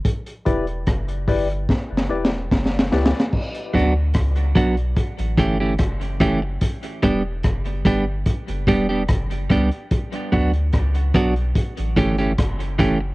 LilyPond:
<<
  \new Staff \with { instrumentName = "Synth stab" } { \time 4/4 \key e \dorian \tempo 4 = 73 r8 <e' g' b' d''>16 r8. <e' g' b' d''>16 r8. <e' g' b' d''>16 r8. <e' g' b' d''>16 <b' d''>16 | r1 | r1 | r1 | }
  \new Staff \with { instrumentName = "Clean electric guitar" } { \time 4/4 \key e \dorian r1 | r8 <fis b d' fis'>16 r8. <fis b d' fis'>16 r8. <e a cis' g'>16 <e a cis' g'>16 r8 <e a cis' g'>16 r16 | r8 <g b d' g'>16 r8. <g b d' g'>16 r8. <g b d' g'>16 <g b d' g'>16 r8 <g b d' g'>16 r16 | r8 <fis b d' fis'>16 r8. <fis b d' fis'>16 r8. <e a cis' g'>16 <e a cis' g'>16 r8 <e a cis' g'>16 r16 | }
  \new Staff \with { instrumentName = "Sub bass" } { \clef bass \time 4/4 \key e \dorian r8 e,,8 fis,,8 g,,8 r16 fis,,16 e,,8 fis,,8 cis,16 r16 | r8 d,8 cis,8 b,,8 r16 a,,16 g,,8 fis,,4 | r8 e,,8 fis,,8 g,,8 r16 fis,,16 e,,8 fis,,8 cis,16 r16 | r8 d,8 cis,8 b,,8 r16 a,,16 g,,8 fis,,4 | }
  \new DrumStaff \with { instrumentName = "Drums" } \drummode { \time 4/4 <hh bd>16 hh16 <hh bd>16 hh16 <hh bd ss>16 hh16 <hho bd>16 hh16 \tuplet 3/2 { <bd sn>8 sn8 sn8 <bd sn>16 sn16 sn16 sn16 sn16 sn16 } | <cymc bd>16 hh16 <hh bd>8 <hh bd ss>16 hh16 <hh bd>16 hh16 <hh bd>16 hh16 <hh bd>8 <hh bd ss>16 hh16 <hh bd>8 | <hh bd>16 hh16 <hh bd>8 <hh bd ss>16 hh16 <hh bd>8 <hh bd>16 hh16 <hh bd>8 <hh bd ss>16 hh16 <hh bd>16 hh16 | <hh bd>16 hh16 <hh bd>16 hh16 <hh bd ss>16 hh16 <hh bd>16 hh16 <hh bd>16 hh16 <hh bd>16 hh16 <hh bd ss>16 hh16 <hh bd>8 | }
>>